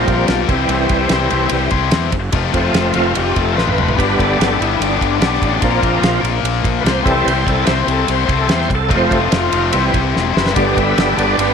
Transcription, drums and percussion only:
0.08 kick medium
0.08 ride medium
0.28 snare loud
0.28 ride medium
0.49 kick loud
0.49 ride medium
0.69 ride medium
0.89 kick medium
0.89 ride medium
1.09 snare loud
1.09 ride loud
1.31 ride medium
1.49 ride loud
1.71 kick medium
1.71 ride medium
1.91 snare loud
1.91 ride medium
2.12 kick medium
2.12 ride medium
2.32 kick loud
2.32 ride loud
2.54 kick medium
2.54 ride medium
2.74 snare loud
2.74 ride loud
2.94 ride medium
3.15 ride loud
3.36 kick medium
3.36 ride medium
3.58 snare medium
3.67 mid tom medium
3.78 mid tom medium
3.89 floor tom medium
3.99 kick loud
3.99 ride medium
4.19 kick medium
4.19 ride medium
4.41 snare loud
4.41 ride loud
4.62 ride medium
4.82 ride loud
5.01 kick medium
5.01 ride medium
5.22 snare loud
5.22 ride medium
5.33 snare soft
5.42 kick medium
5.42 ride medium
5.62 kick loud
5.62 ride medium
5.83 kick medium
5.83 ride medium
6.03 snare loud
6.03 ride loud
6.25 ride medium
6.45 ride loud
6.64 kick medium
6.64 ride medium
6.86 snare loud
6.86 ride medium
7.06 kick loud
7.06 ride medium
7.28 ride loud
7.47 kick medium
7.47 ride medium
7.67 snare loud
7.67 ride loud
7.88 ride medium
8.08 ride loud
8.29 kick medium
8.29 ride medium
8.49 snare loud
8.49 ride medium
8.61 snare soft
8.70 kick medium
8.70 ride medium
8.90 kick loud
8.90 ride medium
9.11 kick medium
9.11 ride medium
9.32 snare loud
9.32 ride loud
9.52 ride medium
9.73 ride loud
9.94 kick medium
9.94 ride medium
10.17 snare medium
10.37 snare loud
10.46 snare medium
10.56 kick loud
10.56 ride medium
10.77 kick medium
10.77 ride medium
10.98 snare loud
10.98 ride medium
11.19 ride medium
11.39 ride loud

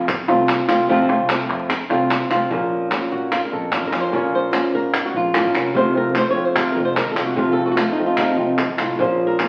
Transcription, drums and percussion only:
0.09 cajon bass loud
0.09 clap medium
0.29 clap soft
0.49 cajon bass medium
0.49 cajon slap loud
0.49 clap medium
0.69 clap medium
0.90 cajon bass medium
1.29 cajon slap loud
1.29 clap medium
1.50 clap soft
1.70 cajon bass loud
1.70 cajon slap soft
1.70 clap medium
1.90 clap soft
2.10 cajon bass medium
2.10 cajon slap loud
2.10 clap medium
2.31 clap medium
2.51 cajon bass medium
2.71 cajon slap soft
2.91 cajon slap medium
2.91 clap medium
3.32 cajon bass medium
3.32 cajon slap soft
3.32 clap medium
3.72 cajon slap medium
3.72 clap medium
3.93 clap medium
4.13 cajon bass medium
4.34 cajon slap soft
4.53 cajon slap medium
4.53 clap medium
4.94 cajon bass medium
4.94 cajon slap soft
4.94 clap medium
5.34 cajon slap loud
5.34 clap medium
5.55 clap medium
5.75 cajon bass medium
6.15 cajon slap medium
6.15 clap medium
6.56 cajon bass medium
6.56 clap medium
6.97 cajon bass medium
6.97 cajon slap loud
6.97 clap medium
7.17 clap medium
7.37 cajon bass medium
7.77 cajon slap medium
7.77 clap medium
7.98 cajon slap soft
8.17 cajon bass medium
8.17 clap medium
8.58 cajon bass medium
8.58 cajon slap medium
8.58 clap medium
8.79 clap medium
8.99 cajon bass medium
9.19 cajon slap soft
9.39 cajon slap medium
9.39 clap medium

